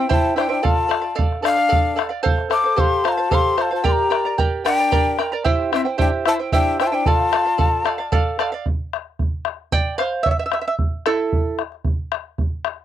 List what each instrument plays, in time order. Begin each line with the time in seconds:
0.08 flugelhorn E4, charango E4 G4 C5 E5 G5, bombo low
0.12 quena A5
0.36 flugelhorn D4, charango E4 C5 E5 G5, quena G5, bombo rim
0.49 flugelhorn D4, charango E4 C5 G5, quena G5
0.62 flugelhorn F4, charango A4 D5 F5, quena A5, bombo low
0.88 charango A4 D5 F5, bombo rim
1.02 charango D5 F5, bombo rim
1.15 charango A4 D5 F5, bombo rim, bombo low
1.32 bombo rim
1.42 flugelhorn D4, charango A4 D5 F5, quena F5, bombo rim
1.56 charango D5 F5, bombo rim
1.69 charango A4 D5 F5, bombo low
1.96 charango A4 D5 F5, bombo rim
2.09 charango D5 F5
2.23 charango A4 C5 F5, bombo low
2.38 bombo rim
2.49 flugelhorn A4, charango A4 C5 F5, quena D6, bombo rim
2.64 charango C5 F5
2.76 flugelhorn G4, charango A4 C5 F5, quena C6, bombo low
3.04 flugelhorn F4, charango A4 C5 F5, bombo rim
3.08 quena A#5
3.13 quena A5
3.18 charango C5 F5
3.30 flugelhorn G4, charango A4 C5 F5, bombo low
3.34 quena C6
3.57 flugelhorn F4, charango A4 C5 F5, bombo rim
3.62 quena A5
3.71 flugelhorn F4, charango C5 F5
3.76 quena A5
3.84 charango G4 A#4 D5 G5 A#5, flugelhorn G4, bombo low
3.88 quena A#5 C6
3.98 bombo rim
4.10 charango A#4 D5 G5 A#5, bombo rim
4.25 charango A#4 D5 A#5
4.38 charango G4 A#4 D5 G5 A#5, bombo low
4.65 flugelhorn D4, charango A#4 D5 G5 A#5, quena G5, bombo rim
4.79 charango A#4 D5 A#5
4.92 charango G4 A#4 D5 G5 A#5, bombo low
5.19 charango A#4 D5 G5 A#5, bombo rim
5.32 charango A#4 D5 A#5
5.44 charango E4 G4 C5 E5 G5, bombo low
5.59 bombo rim
5.72 flugelhorn C4, charango E4 C5 E5 G5, quena E5, bombo rim
5.85 charango E4 C5 G5
5.98 flugelhorn D4, charango E4 G4 C5 E5 G5, quena G5, bombo low
6.25 flugelhorn E4, charango E4 C5 E5 G5, quena A5, bombo rim
6.39 charango E4 C5 G5
6.52 flugelhorn D4, charango E4 G4 C5 E5 G5, quena G5, bombo low
6.79 flugelhorn D4, charango E4 C5 E5 G5, quena G5, bombo rim
6.86 flugelhorn F4, quena A5
6.92 flugelhorn D4, charango E4 C5 G5, quena G5
7.06 flugelhorn F4, charango A4 D5 F5, quena A5, bombo low
7.19 bombo rim
7.32 charango A4 D5 F5, bombo rim
7.45 charango D5 F5
7.58 charango A4 D5 F5, bombo rim, bombo low
7.84 charango A4 D5 F5, bombo rim
7.98 charango D5 F5, bombo rim
8.12 charango A4 D5 F5, bombo rim, bombo low
8.39 charango A4 D5 F5, bombo rim
8.52 charango D5 F5
8.66 bombo rim, bombo low
8.93 bombo rim
9.19 bombo rim, bombo low
9.45 bombo rim
9.72 charango D5 G5, bombo low
9.98 charango C5 F5, bombo rim
10.13 bombo rim
10.23 charango C#5 E5, bombo rim, bombo low
10.31 charango E5
10.39 charango E5
10.46 charango E5
10.52 charango E5, bombo rim
10.61 charango E5
10.68 charango E5
10.79 bombo rim, bombo low
11.06 charango E4 A4, bombo rim
11.33 bombo low
11.59 bombo rim
11.72 bombo rim
11.84 bombo rim, bombo low
12.12 bombo rim
12.38 bombo rim, bombo low
12.65 bombo rim